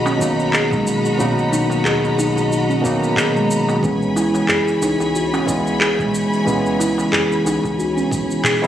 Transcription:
0.00 0.12 B1 medium
0.00 0.16 B2 medium
0.00 0.16 D#3 medium
0.00 0.17 F#3 medium
0.00 0.17 A#3 medium
0.00 0.18 D#4 medium
0.00 3.79 F#4 medium
0.00 3.79 D#5 medium
0.00 3.79 A#5 medium
0.00 3.79 B5 medium
0.06 0.52 C#4 loud
0.06 darbuka tek medium
0.06 shaker soft
0.17 0.94 B1 medium
0.17 1.14 B2 medium
0.17 1.15 D#3 medium
0.17 1.15 F#3 medium
0.17 1.16 A#3 medium
0.17 kick medium
0.17 shaker medium
0.22 1.16 D#4 loud
0.40 shaker soft
0.53 0.70 G#4 medium
0.53 clap medium
0.53 shaker soft
0.71 1.18 G#3 medium
0.71 kick loud
0.71 darbuka dum medium
0.71 shaker soft
0.87 shaker medium
1.05 shaker soft
1.17 1.77 B1 loud
1.17 2.79 B2 medium
1.17 2.80 D#3 medium
1.17 2.80 F#3 medium
1.17 2.81 A#3 medium
1.17 1.51 C#4 medium
1.17 2.81 D#4 medium
1.17 darbuka dum medium
1.17 shaker soft
1.38 shaker soft
1.52 1.84 D#4 loud
1.52 darbuka ka medium
1.52 darbuka tek soft
1.52 shaker medium
1.70 darbuka ka medium
1.70 shaker soft
1.85 1.97 D#2 medium
1.85 1.95 G#4 loud
1.85 clap medium
1.85 shaker soft
2.04 shaker soft
2.18 2.30 B1 loud
2.18 2.50 D#4 loud
2.18 darbuka ka medium
2.18 shaker medium
2.36 2.76 B1 medium
2.36 darbuka ka soft
2.36 shaker soft
2.51 2.68 F#4 medium
2.51 shaker soft
2.69 3.16 C#4 loud
2.69 shaker soft
2.81 3.78 B2 medium
2.81 3.79 D#3 medium
2.81 3.79 F#3 medium
2.81 3.80 A#3 medium
2.81 kick loud
2.81 shaker medium
2.85 3.80 D#4 medium
3.04 shaker soft
3.16 3.33 G#4 medium
3.16 clap medium
3.16 darbuka dum medium
3.16 shaker soft
3.36 3.82 G#3 medium
3.36 shaker soft
3.51 shaker medium
3.69 darbuka tek medium
3.69 shaker soft
3.81 4.41 C#2 loud
3.81 5.43 C#3 medium
3.81 5.44 E3 medium
3.81 8.67 E3 medium
3.81 5.44 G#3 medium
3.81 5.45 B3 medium
3.81 4.14 C#4 medium
3.81 8.67 C#5 medium
3.81 8.67 G#5 medium
3.81 8.67 B5 medium
3.81 kick loud
3.81 darbuka dum medium
3.81 shaker soft
4.02 shaker soft
4.16 4.48 E4 loud
4.16 darbuka ka medium
4.16 darbuka tek soft
4.16 shaker medium
4.34 darbuka ka medium
4.34 shaker soft
4.48 4.61 F#2 medium
4.48 4.59 G#4 loud
4.48 clap medium
4.48 shaker soft
4.68 shaker soft
4.82 4.94 C#2 medium
4.82 5.13 D#4 loud
4.82 darbuka ka medium
4.82 shaker medium
5.00 5.40 C#2 medium
5.00 darbuka ka medium
5.00 shaker soft
5.15 5.31 F#4 medium
5.15 shaker soft
5.33 5.79 C#4 loud
5.33 darbuka tek medium
5.33 shaker soft
5.46 6.22 C#2 medium
5.46 6.42 C#3 medium
5.46 6.43 E3 medium
5.46 6.43 G#3 medium
5.46 6.43 B3 medium
5.46 kick medium
5.46 shaker medium
5.67 shaker soft
5.81 5.97 G#4 medium
5.81 clap loud
5.81 shaker soft
5.99 6.45 G#3 medium
5.99 kick loud
5.99 darbuka dum medium
5.99 shaker soft
6.15 shaker medium
6.33 shaker soft
6.44 7.05 C#2 loud
6.44 8.07 C#3 medium
6.44 8.07 E3 medium
6.44 8.08 G#3 medium
6.44 8.08 B3 medium
6.44 6.78 C#4 medium
6.44 darbuka dum medium
6.44 shaker soft
6.66 shaker soft
6.80 7.11 E4 loud
6.80 darbuka ka medium
6.80 darbuka tek soft
6.80 shaker medium
6.98 darbuka ka medium
6.98 shaker soft
7.12 7.25 F#2 medium
7.12 7.23 G#4 medium
7.12 clap loud
7.12 shaker soft
7.32 shaker soft
7.45 7.57 C#2 loud
7.45 7.77 D#4 medium
7.45 darbuka ka medium
7.45 darbuka tek soft
7.45 shaker medium
7.64 8.03 C#2 medium
7.64 kick medium
7.64 darbuka ka medium
7.64 shaker soft
7.79 7.95 F#4 medium
7.79 shaker soft
7.97 8.43 C#4 loud
7.97 shaker soft
8.11 kick loud
8.11 shaker medium
8.31 shaker soft
8.44 8.61 G#4 medium
8.44 clap loud
8.44 darbuka dum medium
8.44 shaker soft
8.61 8.67 C#3 medium
8.61 8.67 E3 medium
8.61 8.67 G#3 medium
8.61 8.67 B3 medium
8.61 8.67 E4 loud
8.61 shaker soft

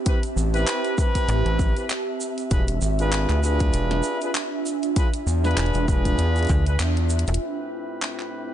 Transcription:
0.00 2.51 C4 medium
0.00 2.51 G4 medium
0.00 8.54 E5 medium
0.00 2.51 A5 medium
0.06 0.18 C4 medium
0.06 0.18 E4 medium
0.06 0.18 G4 medium
0.06 0.18 B4 medium
0.06 kick loud
0.06 closed hi-hat medium
0.06 shaker soft
0.23 closed hi-hat soft
0.23 shaker soft
0.37 0.65 A1 loud
0.37 shaker medium
0.54 0.95 C4 medium
0.54 0.95 E4 medium
0.54 0.95 G4 medium
0.54 0.95 B4 loud
0.54 closed hi-hat soft
0.54 shaker soft
0.67 clap loud
0.67 closed hi-hat medium
0.67 shaker medium
0.85 closed hi-hat soft
0.85 shaker soft
0.98 1.72 C4 loud
0.98 1.72 E4 medium
0.98 1.72 G4 medium
0.98 1.72 B4 loud
0.98 kick loud
0.98 shaker medium
1.15 kick medium
1.15 closed hi-hat soft
1.15 shaker soft
1.29 1.43 A1 loud
1.29 closed hi-hat medium
1.29 shaker soft
1.46 1.74 A1 loud
1.46 closed hi-hat soft
1.59 kick loud
1.59 shaker medium
1.77 1.86 C4 medium
1.77 1.86 E4 medium
1.77 1.86 G4 medium
1.77 1.86 B4 medium
1.77 closed hi-hat soft
1.77 shaker soft
1.90 clap loud
1.90 closed hi-hat medium
1.90 shaker medium
2.21 shaker medium
2.38 closed hi-hat soft
2.38 shaker soft
2.51 2.80 E1 loud
2.51 8.54 D4 medium
2.51 2.63 D4 medium
2.51 2.63 F4 medium
2.51 2.63 G#4 medium
2.51 2.63 B4 medium
2.51 kick loud
2.51 closed hi-hat medium
2.51 shaker soft
2.68 closed hi-hat medium
2.68 shaker soft
2.76 7.41 F4 medium
2.81 3.27 G#1 loud
2.81 shaker medium
2.99 3.40 D4 medium
2.99 3.40 F4 medium
2.99 3.40 G#4 medium
2.99 3.40 B4 loud
2.99 closed hi-hat soft
2.99 shaker soft
3.12 clap loud
3.12 closed hi-hat medium
3.12 shaker soft
3.29 3.71 D2 loud
3.29 clap soft
3.29 closed hi-hat soft
3.29 shaker soft
3.43 4.17 D4 medium
3.43 4.17 F4 medium
3.43 4.17 G#4 medium
3.43 4.17 B4 loud
3.43 shaker medium
3.60 kick loud
3.60 closed hi-hat medium
3.60 shaker soft
3.73 4.02 E1 loud
3.73 closed hi-hat medium
3.73 shaker soft
3.81 7.41 G#5 medium
3.91 snare medium
3.91 closed hi-hat soft
4.03 shaker medium
4.21 4.31 D4 medium
4.21 4.31 F4 medium
4.21 4.31 G#4 medium
4.21 4.31 B4 medium
4.21 closed hi-hat soft
4.21 shaker soft
4.35 clap loud
4.35 closed hi-hat medium
4.35 shaker soft
4.66 shaker medium
4.83 closed hi-hat soft
4.83 shaker soft
4.96 5.08 D4 medium
4.96 5.08 F4 medium
4.96 5.08 G#4 medium
4.96 5.08 B4 loud
4.96 kick loud
4.96 closed hi-hat medium
4.96 shaker soft
5.14 closed hi-hat medium
5.14 shaker soft
5.27 5.55 E2 loud
5.27 shaker medium
5.44 5.85 D4 loud
5.44 5.85 F4 medium
5.44 5.85 G#4 medium
5.44 5.85 B4 loud
5.44 snare soft
5.44 closed hi-hat soft
5.44 shaker soft
5.51 closed hi-hat soft
5.57 5.72 E1 loud
5.57 clap loud
5.57 closed hi-hat medium
5.57 shaker medium
5.66 closed hi-hat soft
5.74 6.16 E1 loud
5.74 closed hi-hat soft
5.74 shaker soft
5.88 6.62 D4 loud
5.88 6.62 F4 medium
5.88 6.62 G#4 medium
5.88 6.62 B4 loud
5.88 kick loud
5.88 shaker medium
6.05 kick medium
6.05 closed hi-hat medium
6.05 shaker soft
6.18 6.47 E2 loud
6.18 closed hi-hat medium
6.18 shaker medium
6.36 closed hi-hat soft
6.36 shaker soft
6.38 closed hi-hat soft
6.43 closed hi-hat soft
6.45 closed hi-hat soft
6.47 6.78 D2 loud
6.47 kick loud
6.47 closed hi-hat soft
6.47 shaker medium
6.66 6.76 D4 medium
6.66 6.76 F4 medium
6.66 6.76 G#4 medium
6.66 6.76 B4 medium
6.66 closed hi-hat soft
6.66 shaker soft
6.79 7.25 E2 loud
6.79 clap loud
6.79 closed hi-hat medium
6.79 shaker medium
6.97 closed hi-hat soft
7.09 closed hi-hat medium
7.09 shaker loud
7.19 closed hi-hat medium
7.27 7.39 E1 medium
7.27 closed hi-hat medium
7.27 shaker soft
7.34 closed hi-hat medium
7.41 8.54 A2 medium
7.41 8.54 C4 medium
7.41 8.54 E4 medium
7.41 8.54 G4 medium
7.41 8.54 B4 medium
7.92 8.54 A4 medium
8.02 clap loud
8.08 8.54 G5 medium
8.19 clap soft

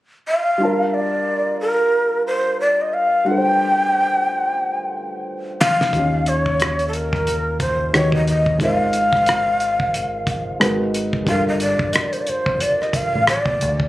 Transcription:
0.28 0.96 F5 medium
0.58 3.22 G3 medium
0.58 3.22 D4 soft
0.58 3.23 F4 medium
0.63 3.25 A#4 medium
0.63 3.24 A5 soft
0.94 1.60 D5 medium
1.61 2.23 A#4 medium
2.27 2.58 C5 medium
2.61 2.83 D5 medium
2.81 2.95 D#5 medium
2.94 3.28 F5 medium
3.25 5.88 G3 soft
3.25 5.89 D4 soft
3.25 5.90 F4 soft
3.25 5.27 G5 loud
3.30 5.91 A4 soft
3.30 3.37 B4 soft
3.38 5.95 C5 medium
5.61 6.30 F5 loud
5.61 snare medium
5.81 snare medium
5.91 7.90 D#2 medium
5.91 7.88 D#3 soft
5.91 7.89 D#4 soft
5.91 7.90 F4 soft
5.91 kick medium
5.91 closed hi-hat medium
5.96 7.92 C#4 medium
5.96 7.91 G4 soft
6.26 6.88 C#5 medium
6.26 closed hi-hat medium
6.46 kick medium
6.60 cross-stick loud
6.60 closed hi-hat medium
6.79 closed hi-hat soft
6.88 6.96 A4 soft
6.93 7.60 A#4 medium
6.93 closed hi-hat medium
7.13 kick medium
7.13 cross-stick soft
7.27 closed hi-hat medium
7.60 7.92 C5 medium
7.60 kick medium
7.60 closed hi-hat medium
7.93 8.57 D#2 medium
7.93 8.60 D#3 medium
7.93 8.58 D#4 medium
7.93 8.61 F#4 medium
7.93 8.61 G4 medium
7.93 8.61 B4 medium
7.93 8.13 C#5 medium
7.93 8.62 C#5 medium
7.93 cross-stick medium
7.93 closed hi-hat medium
8.12 8.27 D#5 medium
8.12 kick medium
8.28 8.59 D#5 medium
8.28 closed hi-hat medium
8.46 kick medium
8.58 10.56 G#1 medium
8.58 10.55 G#3 medium
8.58 10.56 D#4 soft
8.58 10.57 F4 soft
8.58 kick loud
8.58 closed hi-hat medium
8.62 10.58 A#4 medium
8.62 10.59 C5 medium
8.62 10.57 F5 loud
8.93 closed hi-hat medium
9.13 kick medium
9.13 cross-stick soft
9.26 cross-stick medium
9.26 closed hi-hat medium
9.60 closed hi-hat medium
9.80 kick medium
9.94 closed hi-hat medium
10.27 kick medium
10.27 closed hi-hat medium
10.60 11.24 G#1 medium
10.60 11.27 G#3 medium
10.60 11.27 D#4 medium
10.60 11.27 F#4 medium
10.60 11.28 A#4 medium
10.60 11.28 B4 medium
10.60 cross-stick medium
10.60 closed hi-hat medium
10.94 closed hi-hat medium
11.13 kick medium
11.25 11.75 G1 medium
11.25 13.88 G3 medium
11.25 13.88 D4 soft
11.25 13.88 F4 soft
11.25 kick loud
11.25 closed hi-hat medium
11.29 13.88 A4 soft
11.29 13.88 A#4 soft
11.29 11.46 F5 medium
11.48 11.60 D#5 medium
11.60 11.94 D5 medium
11.60 closed hi-hat medium
11.79 kick medium
11.93 12.03 D#5 medium
11.93 cross-stick loud
11.93 closed hi-hat medium
12.02 12.14 D5 medium
12.13 12.22 C5 medium
12.13 closed hi-hat soft
12.21 12.30 D5 medium
12.27 12.63 C5 medium
12.27 muted fingered electric bass stroke soft
12.27 closed hi-hat medium
12.46 12.59 F1 medium
12.46 kick medium
12.60 12.83 D5 medium
12.60 closed hi-hat medium
12.82 12.97 D#5 medium
12.82 cross-stick soft
12.93 13.28 F5 medium
12.93 muted fingered electric bass stroke soft
12.93 kick medium
12.93 closed hi-hat medium
13.15 13.26 A1 medium
13.27 13.85 D5 medium
13.27 cross-stick medium
13.27 closed hi-hat medium
13.46 13.62 A#1 medium
13.46 kick medium
13.61 13.88 D2 medium
13.61 closed hi-hat medium
13.80 kick medium

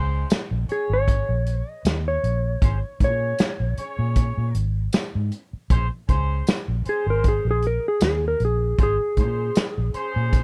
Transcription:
0.00 0.23 C#2 medium
0.00 0.30 C#4 medium
0.00 0.30 G#4 medium
0.00 0.30 C5 medium
0.30 snare loud
0.30 closed hi-hat medium
0.30 tambourine loud
0.51 0.66 A#1 medium
0.69 1.46 C#4 medium
0.69 1.46 G#4 medium
0.69 0.91 G#4 medium
0.69 1.46 C#5 medium
0.69 muted fingered electric bass stroke soft
0.69 closed hi-hat medium
0.90 1.22 G#1 medium
0.90 1.69 C#5 medium
1.08 kick medium
1.08 closed hi-hat medium
1.29 1.61 A#1 medium
1.46 closed hi-hat medium
1.69 2.06 D#5 medium
1.85 2.17 D#2 medium
1.85 snare loud
1.85 closed hi-hat medium
1.85 tambourine medium
2.08 2.98 C#5 medium
2.24 2.55 A#1 medium
2.24 closed hi-hat medium
2.62 2.80 G#1 medium
2.62 2.78 C#4 medium
2.62 2.79 G#4 medium
2.62 2.79 C5 medium
2.62 kick loud
2.62 closed hi-hat medium
3.00 3.32 A#2 loud
3.00 3.40 C#4 medium
3.00 3.40 G#4 medium
3.00 3.40 C#5 medium
3.00 kick medium
3.00 closed hi-hat medium
3.04 4.53 C#5 medium
3.39 snare loud
3.39 closed hi-hat medium
3.39 tambourine loud
3.60 3.74 A#1 medium
3.77 4.55 C#4 medium
3.77 4.55 G#4 medium
3.77 4.55 C#5 medium
3.77 muted fingered electric bass stroke soft
3.77 closed hi-hat medium
3.99 4.31 A#2 medium
4.16 kick medium
4.16 closed hi-hat medium
4.37 4.52 A#2 medium
4.55 4.87 G#1 medium
4.55 closed hi-hat medium
4.93 snare loud
4.93 closed hi-hat medium
4.93 tambourine loud
5.15 5.29 G#2 medium
5.32 closed hi-hat medium
5.53 muted fingered electric bass stroke soft
5.70 5.88 A#1 medium
5.70 5.87 C#4 medium
5.70 5.88 G#4 medium
5.70 5.88 C5 loud
5.70 kick loud
5.70 closed hi-hat medium
6.09 6.41 C#2 medium
6.09 6.47 C#4 medium
6.09 6.48 G#4 medium
6.09 6.48 C5 loud
6.09 kick medium
6.09 closed hi-hat medium
6.47 snare loud
6.47 closed hi-hat medium
6.47 tambourine loud
6.68 6.83 A#1 medium
6.85 7.63 C#4 medium
6.85 7.63 G#4 medium
6.85 7.08 G#4 medium
6.85 7.64 C5 medium
6.85 muted fingered electric bass stroke soft
6.85 closed hi-hat medium
7.06 7.39 G#1 medium
7.06 7.26 A#4 medium
7.24 kick medium
7.24 closed hi-hat medium
7.28 7.47 G#4 medium
7.45 7.78 A#1 medium
7.51 7.65 G#4 medium
7.62 closed hi-hat medium
7.67 7.86 A#4 medium
7.88 8.03 G#4 medium
8.01 8.34 D#2 medium
8.01 snare loud
8.01 closed hi-hat medium
8.01 tambourine loud
8.05 8.24 G#4 medium
8.28 8.42 A#4 medium
8.40 8.72 A#1 medium
8.40 closed hi-hat soft
8.45 8.80 G#4 medium
8.78 8.97 G#1 medium
8.78 8.96 C#4 medium
8.78 8.96 G#4 medium
8.78 8.97 C5 medium
8.78 kick loud
8.78 closed hi-hat medium
8.83 10.44 G#4 medium
9.17 9.49 A#2 medium
9.17 9.57 C#4 medium
9.17 9.57 G#4 medium
9.17 9.57 C5 medium
9.17 kick medium
9.17 closed hi-hat medium
9.55 snare loud
9.55 closed hi-hat medium
9.55 tambourine loud
9.78 9.92 A#1 medium
9.94 10.44 C#4 medium
9.94 10.44 G#4 medium
9.94 10.44 C5 loud
9.94 muted fingered electric bass stroke soft
9.94 closed hi-hat medium
10.16 10.44 A#2 medium
10.33 kick medium
10.33 closed hi-hat medium

